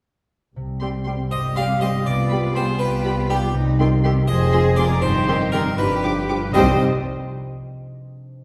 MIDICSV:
0, 0, Header, 1, 13, 480
1, 0, Start_track
1, 0, Key_signature, -3, "minor"
1, 0, Tempo, 496689
1, 549, Time_signature, 6, 3, 24, 8
1, 4862, Tempo, 503356
1, 8116, End_track
2, 0, Start_track
2, 0, Title_t, "Violin section"
2, 0, Program_c, 0, 48
2, 781, Note_on_c, 0, 84, 39
2, 858, Note_off_c, 0, 84, 0
2, 1012, Note_on_c, 0, 84, 35
2, 1090, Note_off_c, 0, 84, 0
2, 1510, Note_on_c, 0, 84, 42
2, 1587, Note_off_c, 0, 84, 0
2, 1743, Note_on_c, 0, 84, 45
2, 1820, Note_off_c, 0, 84, 0
2, 2221, Note_on_c, 0, 83, 46
2, 2299, Note_off_c, 0, 83, 0
2, 2461, Note_on_c, 0, 83, 42
2, 2538, Note_off_c, 0, 83, 0
2, 2947, Note_on_c, 0, 83, 55
2, 3024, Note_off_c, 0, 83, 0
2, 3179, Note_on_c, 0, 83, 52
2, 3256, Note_off_c, 0, 83, 0
2, 3666, Note_on_c, 0, 84, 53
2, 3742, Note_off_c, 0, 84, 0
2, 3907, Note_on_c, 0, 84, 49
2, 3983, Note_off_c, 0, 84, 0
2, 4377, Note_on_c, 0, 84, 65
2, 4454, Note_off_c, 0, 84, 0
2, 4620, Note_on_c, 0, 84, 62
2, 4697, Note_off_c, 0, 84, 0
2, 5104, Note_on_c, 0, 84, 63
2, 5180, Note_off_c, 0, 84, 0
2, 5342, Note_on_c, 0, 84, 52
2, 5418, Note_off_c, 0, 84, 0
2, 5820, Note_on_c, 0, 86, 61
2, 5897, Note_off_c, 0, 86, 0
2, 6064, Note_on_c, 0, 86, 54
2, 6141, Note_off_c, 0, 86, 0
2, 6304, Note_on_c, 0, 72, 80
2, 6572, Note_off_c, 0, 72, 0
2, 8116, End_track
3, 0, Start_track
3, 0, Title_t, "Flute"
3, 0, Program_c, 1, 73
3, 800, Note_on_c, 1, 79, 38
3, 857, Note_off_c, 1, 79, 0
3, 1026, Note_on_c, 1, 79, 40
3, 1084, Note_off_c, 1, 79, 0
3, 1517, Note_on_c, 1, 79, 42
3, 1575, Note_off_c, 1, 79, 0
3, 1757, Note_on_c, 1, 79, 47
3, 1815, Note_off_c, 1, 79, 0
3, 2243, Note_on_c, 1, 79, 45
3, 2301, Note_off_c, 1, 79, 0
3, 2479, Note_on_c, 1, 79, 45
3, 2537, Note_off_c, 1, 79, 0
3, 2950, Note_on_c, 1, 79, 52
3, 3008, Note_off_c, 1, 79, 0
3, 3194, Note_on_c, 1, 79, 57
3, 3252, Note_off_c, 1, 79, 0
3, 3658, Note_on_c, 1, 79, 56
3, 3716, Note_off_c, 1, 79, 0
3, 3906, Note_on_c, 1, 79, 58
3, 3964, Note_off_c, 1, 79, 0
3, 4388, Note_on_c, 1, 80, 67
3, 4446, Note_off_c, 1, 80, 0
3, 4633, Note_on_c, 1, 80, 61
3, 4691, Note_off_c, 1, 80, 0
3, 5103, Note_on_c, 1, 79, 60
3, 5160, Note_off_c, 1, 79, 0
3, 5339, Note_on_c, 1, 79, 61
3, 5396, Note_off_c, 1, 79, 0
3, 5826, Note_on_c, 1, 79, 58
3, 5883, Note_off_c, 1, 79, 0
3, 6067, Note_on_c, 1, 79, 60
3, 6124, Note_off_c, 1, 79, 0
3, 6310, Note_on_c, 1, 79, 75
3, 6575, Note_off_c, 1, 79, 0
3, 8116, End_track
4, 0, Start_track
4, 0, Title_t, "Harpsichord"
4, 0, Program_c, 2, 6
4, 1270, Note_on_c, 2, 75, 58
4, 1496, Note_off_c, 2, 75, 0
4, 1511, Note_on_c, 2, 77, 66
4, 1737, Note_off_c, 2, 77, 0
4, 1751, Note_on_c, 2, 75, 64
4, 1976, Note_off_c, 2, 75, 0
4, 1994, Note_on_c, 2, 74, 73
4, 2440, Note_off_c, 2, 74, 0
4, 2478, Note_on_c, 2, 72, 66
4, 2696, Note_on_c, 2, 71, 74
4, 2697, Note_off_c, 2, 72, 0
4, 3147, Note_off_c, 2, 71, 0
4, 3191, Note_on_c, 2, 67, 68
4, 3412, Note_off_c, 2, 67, 0
4, 4132, Note_on_c, 2, 75, 97
4, 4582, Note_off_c, 2, 75, 0
4, 4603, Note_on_c, 2, 74, 80
4, 4836, Note_off_c, 2, 74, 0
4, 4850, Note_on_c, 2, 72, 92
4, 5300, Note_off_c, 2, 72, 0
4, 5328, Note_on_c, 2, 70, 82
4, 5557, Note_off_c, 2, 70, 0
4, 5578, Note_on_c, 2, 71, 73
4, 6270, Note_off_c, 2, 71, 0
4, 6301, Note_on_c, 2, 75, 92
4, 6571, Note_off_c, 2, 75, 0
4, 8116, End_track
5, 0, Start_track
5, 0, Title_t, "Oboe"
5, 0, Program_c, 3, 68
5, 1269, Note_on_c, 3, 75, 51
5, 1379, Note_off_c, 3, 75, 0
5, 1506, Note_on_c, 3, 77, 53
5, 1750, Note_on_c, 3, 75, 60
5, 1764, Note_off_c, 3, 77, 0
5, 1977, Note_off_c, 3, 75, 0
5, 1983, Note_on_c, 3, 74, 63
5, 2458, Note_off_c, 3, 74, 0
5, 2464, Note_on_c, 3, 72, 59
5, 2574, Note_off_c, 3, 72, 0
5, 2704, Note_on_c, 3, 71, 56
5, 3176, Note_off_c, 3, 71, 0
5, 3185, Note_on_c, 3, 67, 55
5, 3421, Note_off_c, 3, 67, 0
5, 4147, Note_on_c, 3, 75, 84
5, 4590, Note_off_c, 3, 75, 0
5, 4621, Note_on_c, 3, 74, 80
5, 4860, Note_on_c, 3, 72, 84
5, 4875, Note_off_c, 3, 74, 0
5, 5324, Note_off_c, 3, 72, 0
5, 5330, Note_on_c, 3, 70, 81
5, 5560, Note_off_c, 3, 70, 0
5, 5566, Note_on_c, 3, 71, 72
5, 6288, Note_off_c, 3, 71, 0
5, 6292, Note_on_c, 3, 75, 84
5, 6497, Note_off_c, 3, 75, 0
5, 8116, End_track
6, 0, Start_track
6, 0, Title_t, "Violin section"
6, 0, Program_c, 4, 48
6, 1268, Note_on_c, 4, 72, 52
6, 1345, Note_off_c, 4, 72, 0
6, 1513, Note_on_c, 4, 74, 58
6, 1591, Note_off_c, 4, 74, 0
6, 1755, Note_on_c, 4, 72, 57
6, 1832, Note_off_c, 4, 72, 0
6, 1995, Note_on_c, 4, 71, 63
6, 2462, Note_on_c, 4, 68, 62
6, 2464, Note_off_c, 4, 71, 0
6, 2701, Note_on_c, 4, 67, 64
6, 2706, Note_off_c, 4, 68, 0
6, 3180, Note_on_c, 4, 63, 57
6, 3184, Note_off_c, 4, 67, 0
6, 3257, Note_off_c, 4, 63, 0
6, 4151, Note_on_c, 4, 72, 77
6, 4592, Note_off_c, 4, 72, 0
6, 4621, Note_on_c, 4, 70, 75
6, 4857, Note_off_c, 4, 70, 0
6, 4862, Note_on_c, 4, 67, 81
6, 5330, Note_off_c, 4, 67, 0
6, 5342, Note_on_c, 4, 67, 76
6, 5418, Note_off_c, 4, 67, 0
6, 5580, Note_on_c, 4, 67, 69
6, 6295, Note_off_c, 4, 67, 0
6, 6312, Note_on_c, 4, 75, 74
6, 6576, Note_off_c, 4, 75, 0
6, 8116, End_track
7, 0, Start_track
7, 0, Title_t, "Cello section"
7, 0, Program_c, 5, 48
7, 1270, Note_on_c, 5, 67, 53
7, 1954, Note_off_c, 5, 67, 0
7, 2000, Note_on_c, 5, 65, 50
7, 3402, Note_off_c, 5, 65, 0
7, 3428, Note_on_c, 5, 63, 60
7, 3662, Note_off_c, 5, 63, 0
7, 3669, Note_on_c, 5, 65, 67
7, 3746, Note_off_c, 5, 65, 0
7, 3906, Note_on_c, 5, 67, 75
7, 3983, Note_off_c, 5, 67, 0
7, 4140, Note_on_c, 5, 68, 78
7, 4846, Note_off_c, 5, 68, 0
7, 4861, Note_on_c, 5, 63, 76
7, 5565, Note_off_c, 5, 63, 0
7, 5580, Note_on_c, 5, 67, 66
7, 5944, Note_off_c, 5, 67, 0
7, 6304, Note_on_c, 5, 36, 84
7, 6572, Note_off_c, 5, 36, 0
7, 8116, End_track
8, 0, Start_track
8, 0, Title_t, "Harp"
8, 0, Program_c, 6, 46
8, 544, Note_on_c, 6, 48, 45
8, 783, Note_on_c, 6, 60, 39
8, 1030, Note_on_c, 6, 67, 40
8, 1266, Note_on_c, 6, 72, 43
8, 1504, Note_off_c, 6, 67, 0
8, 1516, Note_on_c, 6, 67, 39
8, 1740, Note_off_c, 6, 60, 0
8, 1752, Note_on_c, 6, 60, 38
8, 1986, Note_off_c, 6, 48, 0
8, 1998, Note_on_c, 6, 48, 51
8, 2010, Note_off_c, 6, 72, 0
8, 2013, Note_off_c, 6, 60, 0
8, 2229, Note_on_c, 6, 59, 41
8, 2455, Note_off_c, 6, 67, 0
8, 2466, Note_on_c, 6, 67, 44
8, 2706, Note_on_c, 6, 71, 50
8, 2942, Note_on_c, 6, 74, 47
8, 3168, Note_off_c, 6, 67, 0
8, 3407, Note_off_c, 6, 48, 0
8, 3419, Note_on_c, 6, 48, 61
8, 3443, Note_off_c, 6, 74, 0
8, 3444, Note_off_c, 6, 59, 0
8, 3444, Note_off_c, 6, 71, 0
8, 3659, Note_on_c, 6, 60, 54
8, 3898, Note_on_c, 6, 63, 53
8, 3904, Note_on_c, 6, 67, 61
8, 4138, Note_on_c, 6, 41, 72
8, 4158, Note_off_c, 6, 48, 0
8, 4162, Note_off_c, 6, 67, 0
8, 4364, Note_off_c, 6, 60, 0
8, 4376, Note_on_c, 6, 60, 58
8, 4623, Note_on_c, 6, 65, 49
8, 4627, Note_on_c, 6, 68, 53
8, 4859, Note_on_c, 6, 43, 68
8, 4879, Note_off_c, 6, 41, 0
8, 4882, Note_off_c, 6, 65, 0
8, 4884, Note_off_c, 6, 68, 0
8, 5085, Note_off_c, 6, 60, 0
8, 5096, Note_on_c, 6, 60, 54
8, 5324, Note_off_c, 6, 63, 0
8, 5336, Note_on_c, 6, 63, 56
8, 5340, Note_on_c, 6, 67, 61
8, 5565, Note_off_c, 6, 43, 0
8, 5577, Note_on_c, 6, 43, 72
8, 5597, Note_off_c, 6, 60, 0
8, 5597, Note_off_c, 6, 63, 0
8, 5819, Note_on_c, 6, 62, 51
8, 6057, Note_off_c, 6, 67, 0
8, 6062, Note_on_c, 6, 65, 47
8, 6068, Note_on_c, 6, 67, 50
8, 6267, Note_on_c, 6, 48, 70
8, 6282, Note_on_c, 6, 60, 60
8, 6286, Note_off_c, 6, 67, 0
8, 6300, Note_on_c, 6, 63, 62
8, 6314, Note_on_c, 6, 67, 66
8, 6326, Note_off_c, 6, 65, 0
8, 6327, Note_off_c, 6, 43, 0
8, 6327, Note_off_c, 6, 62, 0
8, 6332, Note_on_c, 6, 75, 65
8, 6568, Note_off_c, 6, 67, 0
8, 6569, Note_off_c, 6, 60, 0
8, 6569, Note_off_c, 6, 75, 0
8, 6570, Note_off_c, 6, 48, 0
8, 6570, Note_off_c, 6, 63, 0
8, 8116, End_track
9, 0, Start_track
9, 0, Title_t, "Viola section"
9, 0, Program_c, 7, 48
9, 784, Note_on_c, 7, 55, 41
9, 787, Note_on_c, 7, 67, 40
9, 861, Note_off_c, 7, 55, 0
9, 865, Note_off_c, 7, 67, 0
9, 1030, Note_on_c, 7, 55, 40
9, 1031, Note_on_c, 7, 67, 36
9, 1107, Note_off_c, 7, 55, 0
9, 1108, Note_off_c, 7, 67, 0
9, 1514, Note_on_c, 7, 67, 38
9, 1515, Note_on_c, 7, 55, 42
9, 1592, Note_off_c, 7, 55, 0
9, 1592, Note_off_c, 7, 67, 0
9, 1754, Note_on_c, 7, 67, 42
9, 1756, Note_on_c, 7, 55, 43
9, 1831, Note_off_c, 7, 67, 0
9, 1832, Note_off_c, 7, 55, 0
9, 2235, Note_on_c, 7, 55, 47
9, 2237, Note_on_c, 7, 67, 47
9, 2312, Note_off_c, 7, 55, 0
9, 2313, Note_off_c, 7, 67, 0
9, 2465, Note_on_c, 7, 55, 43
9, 2469, Note_on_c, 7, 67, 44
9, 2542, Note_off_c, 7, 55, 0
9, 2546, Note_off_c, 7, 67, 0
9, 2952, Note_on_c, 7, 67, 44
9, 2953, Note_on_c, 7, 55, 53
9, 3029, Note_off_c, 7, 55, 0
9, 3029, Note_off_c, 7, 67, 0
9, 3191, Note_on_c, 7, 55, 48
9, 3192, Note_on_c, 7, 67, 53
9, 3267, Note_off_c, 7, 55, 0
9, 3268, Note_off_c, 7, 67, 0
9, 3665, Note_on_c, 7, 51, 59
9, 3665, Note_on_c, 7, 67, 57
9, 3742, Note_off_c, 7, 51, 0
9, 3742, Note_off_c, 7, 67, 0
9, 3907, Note_on_c, 7, 67, 52
9, 3909, Note_on_c, 7, 51, 59
9, 3983, Note_off_c, 7, 67, 0
9, 3984, Note_off_c, 7, 51, 0
9, 4381, Note_on_c, 7, 68, 59
9, 4382, Note_on_c, 7, 53, 57
9, 4458, Note_off_c, 7, 68, 0
9, 4459, Note_off_c, 7, 53, 0
9, 4617, Note_on_c, 7, 53, 64
9, 4619, Note_on_c, 7, 68, 63
9, 4694, Note_off_c, 7, 53, 0
9, 4696, Note_off_c, 7, 68, 0
9, 5097, Note_on_c, 7, 67, 62
9, 5098, Note_on_c, 7, 51, 61
9, 5173, Note_off_c, 7, 67, 0
9, 5174, Note_off_c, 7, 51, 0
9, 5337, Note_on_c, 7, 67, 59
9, 5339, Note_on_c, 7, 51, 58
9, 5413, Note_off_c, 7, 67, 0
9, 5415, Note_off_c, 7, 51, 0
9, 5819, Note_on_c, 7, 53, 57
9, 5819, Note_on_c, 7, 67, 53
9, 5895, Note_off_c, 7, 53, 0
9, 5895, Note_off_c, 7, 67, 0
9, 6065, Note_on_c, 7, 53, 54
9, 6068, Note_on_c, 7, 67, 56
9, 6141, Note_off_c, 7, 53, 0
9, 6144, Note_off_c, 7, 67, 0
9, 6303, Note_on_c, 7, 55, 75
9, 6304, Note_on_c, 7, 67, 68
9, 6571, Note_off_c, 7, 55, 0
9, 6572, Note_off_c, 7, 67, 0
9, 8116, End_track
10, 0, Start_track
10, 0, Title_t, "Clarinet"
10, 0, Program_c, 8, 71
10, 784, Note_on_c, 8, 60, 37
10, 873, Note_off_c, 8, 60, 0
10, 1035, Note_on_c, 8, 60, 39
10, 1121, Note_off_c, 8, 60, 0
10, 1522, Note_on_c, 8, 60, 41
10, 1607, Note_off_c, 8, 60, 0
10, 1765, Note_on_c, 8, 60, 41
10, 1849, Note_off_c, 8, 60, 0
10, 2234, Note_on_c, 8, 59, 43
10, 2320, Note_off_c, 8, 59, 0
10, 2465, Note_on_c, 8, 59, 48
10, 2553, Note_off_c, 8, 59, 0
10, 2945, Note_on_c, 8, 59, 46
10, 3032, Note_off_c, 8, 59, 0
10, 3179, Note_on_c, 8, 59, 51
10, 3267, Note_off_c, 8, 59, 0
10, 3660, Note_on_c, 8, 60, 54
10, 3747, Note_off_c, 8, 60, 0
10, 3906, Note_on_c, 8, 60, 54
10, 3992, Note_off_c, 8, 60, 0
10, 4380, Note_on_c, 8, 60, 63
10, 4467, Note_off_c, 8, 60, 0
10, 4622, Note_on_c, 8, 60, 56
10, 4708, Note_off_c, 8, 60, 0
10, 5100, Note_on_c, 8, 60, 63
10, 5186, Note_off_c, 8, 60, 0
10, 5345, Note_on_c, 8, 60, 59
10, 5430, Note_off_c, 8, 60, 0
10, 5828, Note_on_c, 8, 62, 49
10, 5915, Note_off_c, 8, 62, 0
10, 6074, Note_on_c, 8, 62, 54
10, 6160, Note_off_c, 8, 62, 0
10, 6314, Note_on_c, 8, 60, 66
10, 6511, Note_off_c, 8, 60, 0
10, 8116, End_track
11, 0, Start_track
11, 0, Title_t, "French horn section"
11, 0, Program_c, 10, 60
11, 538, Note_on_c, 10, 55, 45
11, 546, Note_on_c, 10, 60, 44
11, 1956, Note_off_c, 10, 60, 0
11, 1985, Note_on_c, 10, 59, 57
11, 3384, Note_off_c, 10, 55, 0
11, 3394, Note_off_c, 10, 59, 0
11, 3429, Note_on_c, 10, 55, 61
11, 3432, Note_on_c, 10, 63, 59
11, 4129, Note_off_c, 10, 55, 0
11, 4137, Note_on_c, 10, 56, 61
11, 4142, Note_on_c, 10, 65, 67
11, 4145, Note_off_c, 10, 63, 0
11, 4859, Note_off_c, 10, 56, 0
11, 4862, Note_off_c, 10, 65, 0
11, 4875, Note_on_c, 10, 55, 69
11, 4878, Note_on_c, 10, 63, 71
11, 5572, Note_off_c, 10, 55, 0
11, 5573, Note_off_c, 10, 63, 0
11, 5573, Note_on_c, 10, 53, 65
11, 5581, Note_on_c, 10, 62, 65
11, 6063, Note_off_c, 10, 53, 0
11, 6067, Note_off_c, 10, 62, 0
11, 6312, Note_on_c, 10, 55, 73
11, 6315, Note_on_c, 10, 63, 67
11, 6510, Note_off_c, 10, 55, 0
11, 6512, Note_off_c, 10, 63, 0
11, 8116, End_track
12, 0, Start_track
12, 0, Title_t, "Bassoon"
12, 0, Program_c, 11, 70
12, 791, Note_on_c, 11, 55, 44
12, 879, Note_off_c, 11, 55, 0
12, 1035, Note_on_c, 11, 55, 39
12, 1121, Note_off_c, 11, 55, 0
12, 1510, Note_on_c, 11, 55, 42
12, 1598, Note_off_c, 11, 55, 0
12, 1746, Note_on_c, 11, 55, 43
12, 1834, Note_off_c, 11, 55, 0
12, 2229, Note_on_c, 11, 55, 45
12, 2317, Note_off_c, 11, 55, 0
12, 2466, Note_on_c, 11, 55, 39
12, 2554, Note_off_c, 11, 55, 0
12, 2942, Note_on_c, 11, 55, 51
12, 3030, Note_off_c, 11, 55, 0
12, 3182, Note_on_c, 11, 55, 54
12, 3270, Note_off_c, 11, 55, 0
12, 3674, Note_on_c, 11, 51, 57
12, 3758, Note_off_c, 11, 51, 0
12, 3910, Note_on_c, 11, 51, 53
12, 3995, Note_off_c, 11, 51, 0
12, 4389, Note_on_c, 11, 53, 56
12, 4474, Note_off_c, 11, 53, 0
12, 4625, Note_on_c, 11, 53, 60
12, 4711, Note_off_c, 11, 53, 0
12, 5108, Note_on_c, 11, 51, 67
12, 5192, Note_off_c, 11, 51, 0
12, 5336, Note_on_c, 11, 51, 61
12, 5423, Note_off_c, 11, 51, 0
12, 5811, Note_on_c, 11, 53, 53
12, 5902, Note_off_c, 11, 53, 0
12, 6060, Note_on_c, 11, 53, 55
12, 6149, Note_off_c, 11, 53, 0
12, 6297, Note_on_c, 11, 55, 69
12, 6501, Note_off_c, 11, 55, 0
12, 8116, End_track
13, 0, Start_track
13, 0, Title_t, "Double bass section"
13, 0, Program_c, 12, 48
13, 544, Note_on_c, 12, 36, 47
13, 1151, Note_off_c, 12, 36, 0
13, 1270, Note_on_c, 12, 31, 54
13, 1873, Note_off_c, 12, 31, 0
13, 1993, Note_on_c, 12, 36, 56
13, 2592, Note_off_c, 12, 36, 0
13, 2709, Note_on_c, 12, 36, 59
13, 3307, Note_off_c, 12, 36, 0
13, 3428, Note_on_c, 12, 36, 64
13, 4024, Note_off_c, 12, 36, 0
13, 4138, Note_on_c, 12, 29, 74
13, 4739, Note_off_c, 12, 29, 0
13, 4863, Note_on_c, 12, 31, 79
13, 5459, Note_off_c, 12, 31, 0
13, 5574, Note_on_c, 12, 31, 80
13, 6186, Note_off_c, 12, 31, 0
13, 6302, Note_on_c, 12, 36, 82
13, 6571, Note_off_c, 12, 36, 0
13, 8116, End_track
0, 0, End_of_file